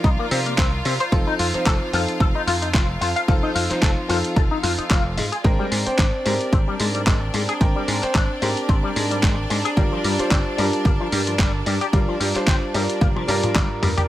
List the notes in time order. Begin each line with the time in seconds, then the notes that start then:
Already playing: F3 D#4 F4 A#4 D5 F5
0.04 C2 D#4, kick, closed hi-hat
0.19 A#3
0.31 C3 C4, open hi-hat
0.46 A#3, closed hi-hat
0.58 C2 C4, kick, clap, closed hi-hat
0.85 C3 C4, open hi-hat
1.00 C5, closed hi-hat
1.12 F1 F3 C4 D#4 F4 A4, kick, closed hi-hat
1.27 D#4
1.39 F2 F4, open hi-hat
1.54 F3 C4 D#4 C5, muted slap bass stroke, closed hi-hat
1.66 F1 A4, kick, clap, closed hi-hat
1.92 F2 F3 C4 D#4 F4 A4, open hi-hat
2.08 closed hi-hat
2.20 F1 A4, kick, closed hi-hat
2.35 D#4
2.47 F2 F4, open hi-hat
2.62 D#4, closed hi-hat
2.74 F1 F4, kick, clap, closed hi-hat
3.01 F2 F4, open hi-hat
3.16 F5, closed hi-hat
3.28 F1 F3 C4 D#4 F4 A4, kick, closed hi-hat
3.43 D#4
3.55 F2 F4, open hi-hat
3.70 F3 C4 D#4 C5, muted slap bass stroke, clap, closed hi-hat
3.82 F1 A4, kick, clap, closed hi-hat
4.08 F2 F3 C4 D#4 F4 A4, open hi-hat
4.24 closed hi-hat
4.36 F1 A4, kick, closed hi-hat
4.51 D#4
4.63 F2 F4, open hi-hat
4.78 D#4, muted slap bass stroke, closed hi-hat
4.90 F1 F4, kick, clap, closed hi-hat
5.17 G#2 G#3, open hi-hat
5.32 G#4, closed hi-hat
5.44 G#1 G#3 C4 D4 A#4 D5 G5, kick, closed hi-hat
5.59 G3
5.71 G#2 G#3, open hi-hat
5.86 C4 C5 G5, muted slap bass stroke, closed hi-hat
5.98 G#1 D4, kick, clap, closed hi-hat
6.25 G#2 G#3 C4 G4 A#4, open hi-hat
6.41 closed hi-hat
6.53 G#1 C4, kick, closed hi-hat
6.68 G3
6.80 G#2 G#3, open hi-hat
6.95 G3, closed hi-hat
7.07 G#1 G#3, kick, clap, closed hi-hat
7.34 G#2 G#3, open hi-hat
7.49 G#4, closed hi-hat
7.61 G#1 G#3 C4 A#4 G5, kick, closed hi-hat
7.76 G3
7.88 G#2 G#3, open hi-hat
8.03 C4 C5 G5, muted slap bass stroke, clap, closed hi-hat
8.15 G#1 D4, kick, clap, closed hi-hat
8.42 G#2 G#3 C4 G4 A#4, open hi-hat
8.57 closed hi-hat
8.69 G#1 C4, kick, closed hi-hat
8.84 G3
8.96 G#2 G#3, open hi-hat
9.11 G3, closed hi-hat
9.23 G#1 G#3, kick, clap, closed hi-hat
9.50 G#2 G#3, open hi-hat
9.65 G#4, closed hi-hat
9.76 G1 G3 D4 F4 A#4, kick, closed hi-hat
9.92 F3
10.04 G2 G3, open hi-hat
10.19 G3 D4 F4 C5, muted slap bass stroke, closed hi-hat
10.31 G1 C4, kick, clap, closed hi-hat
10.57 G2 G3 D4 F4 A#4, open hi-hat
10.73 closed hi-hat
10.85 G1 A#3, kick, closed hi-hat
11.00 F3
11.12 G2 G3, open hi-hat
11.27 F3, closed hi-hat
11.39 G1 G3, kick, clap, closed hi-hat
11.66 G2 G3, open hi-hat
11.81 G4, closed hi-hat
11.93 G1 G3 D4 F4 A#4, kick, closed hi-hat
12.08 F3
12.20 G2 G3, open hi-hat
12.35 G3 D4 F4 C5, muted slap bass stroke, clap, closed hi-hat
12.47 G1 C4, kick, clap, closed hi-hat
12.74 G2 G3 D4 F4 A#4, open hi-hat
12.89 closed hi-hat
13.01 G1 A#3, kick, closed hi-hat, high tom
13.16 F3, high tom
13.27 G2 G3 D4 F4 A#4, open hi-hat
13.43 F3, muted slap bass stroke, closed hi-hat, mid tom
13.55 G1 G3, kick, clap, closed hi-hat, mid tom
13.82 G2 G3, mid tom, open hi-hat
13.97 G4, closed hi-hat, mid tom